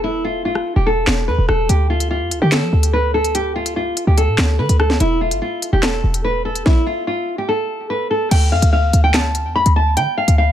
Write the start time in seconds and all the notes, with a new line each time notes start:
Already playing: E1
0.04 E4
0.24 F4
0.45 F4
0.55 cross-stick
0.76 E1 G4
0.87 A4
1.07 E1, snare, clap
1.28 E2 B4
1.38 E1
1.49 E1 A4, cross-stick
1.69 D2 G4, closed hi-hat
1.90 F4
2.00 closed hi-hat
2.11 F4
2.21 F2
2.31 D2, closed hi-hat
2.42 D3 G4
2.52 A4, snare, clap, closed hi-hat
2.62 F3
2.73 D2
2.83 closed hi-hat
2.93 B4
3.14 A4
3.24 closed hi-hat
3.35 G4, closed hi-hat
3.56 F4
3.66 closed hi-hat
3.76 F4
3.97 closed hi-hat
4.07 D2 G4
4.18 A4, closed hi-hat
4.28 A2
4.38 D2, snare, clap, closed hi-hat
4.59 D3 B4
4.69 D2, closed hi-hat
4.80 A4, cross-stick
4.90 snare
5.00 E1 E4, closed hi-hat
5.21 F4
5.31 G1, closed hi-hat
5.42 F4
5.62 closed hi-hat
5.73 E1 G4
5.83 A4, snare, clap, closed hi-hat
6.04 E1
6.14 closed hi-hat
6.24 B4
6.45 A4
6.55 closed hi-hat
6.66 E4, kick, snare
6.87 F4
7.07 F4
7.38 G4
7.49 A4
7.90 B4
8.11 A4
8.31 D2 G5, closed hi-hat, crash
8.52 F2 F5
8.62 D2, closed hi-hat
8.73 F5
8.93 D2, closed hi-hat
9.04 G5
9.14 A5, snare, clap, closed hi-hat
9.35 closed hi-hat
9.45 E2
9.56 B5
9.66 D2, closed hi-hat
9.76 A5
9.97 D3 G5, closed hi-hat
10.17 F5
10.28 D2, closed hi-hat
10.38 F5